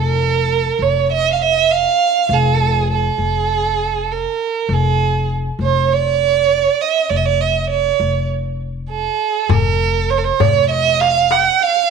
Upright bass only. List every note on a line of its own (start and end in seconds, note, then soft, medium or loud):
0.00 0.68 F1 medium
0.79 1.84 F1 medium
2.29 3.08 F1 medium
3.18 4.24 F1 medium
4.69 5.48 F1 medium
5.59 6.65 F1 medium
7.10 7.89 F1 medium
8.00 9.05 F1 medium
9.49 10.29 F1 medium
10.40 11.46 F1 medium